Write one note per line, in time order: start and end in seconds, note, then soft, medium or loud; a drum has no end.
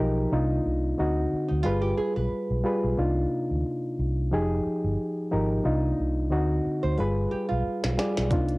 0.00 0.26 B1 medium
0.00 0.33 F3 medium
0.00 0.32 D#4 medium
0.00 0.32 G4 medium
0.00 0.33 G#4 medium
0.00 0.24 A#4 medium
0.31 0.59 C2 medium
0.31 0.98 C3 medium
0.31 0.98 A#3 medium
0.31 0.98 D4 medium
0.31 0.98 D#4 medium
0.31 0.99 F4 medium
0.66 0.92 C2 medium
0.98 1.25 D2 medium
0.98 1.52 D3 medium
0.98 1.52 C4 medium
0.98 1.53 D#4 medium
0.98 1.53 F#4 medium
1.34 muted fingered electric bass stroke soft
1.49 1.62 D2 medium
1.49 1.63 D#4 medium
1.63 1.92 G1 medium
1.63 2.45 G3 medium
1.63 1.81 F4 medium
1.63 2.45 F4 medium
1.63 2.46 G#4 medium
1.63 2.46 B4 medium
1.82 1.96 G4 medium
1.97 2.15 G#4 medium
1.97 muted fingered electric bass stroke soft
2.16 2.29 B1 medium
2.16 2.94 B4 medium
2.32 muted fingered electric bass stroke soft
2.50 2.62 B1 medium
2.64 2.90 G3 medium
2.64 2.90 F4 medium
2.64 2.90 G#4 medium
2.64 2.91 B4 medium
2.84 2.96 B1 medium
2.98 3.25 C2 medium
2.98 3.98 C3 medium
2.98 3.98 A#3 medium
2.98 3.98 D4 medium
2.98 3.99 D#4 medium
2.98 3.99 F4 medium
3.51 3.62 D2 medium
3.99 4.34 C2 medium
4.31 4.59 F1 loud
4.31 5.12 F3 medium
4.31 5.13 D#4 medium
4.31 5.13 G4 medium
4.31 5.13 G#4 medium
4.66 muted fingered electric bass stroke soft
4.84 4.96 G1 medium
5.31 5.59 G#1 medium
5.31 5.57 F3 medium
5.31 5.57 D#4 medium
5.31 5.57 G4 medium
5.31 5.58 A#4 medium
5.64 5.92 C2 medium
5.64 6.31 C3 medium
5.64 6.30 A#3 medium
5.64 6.31 D4 medium
5.64 6.31 D#4 medium
5.64 6.31 F4 medium
6.00 6.33 C2 medium
6.30 6.59 D2 medium
6.30 6.85 D3 medium
6.30 6.85 C4 medium
6.30 6.86 D#4 medium
6.30 6.86 F#4 medium
6.66 muted fingered electric bass stroke soft
6.83 6.96 D2 medium
6.83 6.97 C5 medium
6.97 7.25 G1 medium
6.97 7.79 G3 medium
6.97 7.79 F4 medium
6.97 7.79 G#4 medium
6.97 7.29 B4 medium
6.97 7.80 B4 medium
7.31 7.48 G4 medium
7.31 muted fingered electric bass stroke soft
7.49 7.63 B1 medium
7.49 8.27 F4 medium
7.67 muted fingered electric bass stroke soft
7.84 7.96 B1 medium
7.84 snare medium
7.98 8.23 G3 medium
7.98 8.24 F4 medium
7.98 8.24 G#4 medium
7.98 8.24 D5 medium
7.98 snare medium
8.17 8.32 B1 medium
8.17 snare medium
8.31 8.58 C2 medium
8.31 8.58 C3 medium
8.31 8.58 A#3 medium
8.31 8.58 D4 medium
8.31 8.58 D#4 medium
8.31 8.58 F4 medium
8.31 kick loud
8.31 closed hi-hat medium
8.49 closed hi-hat soft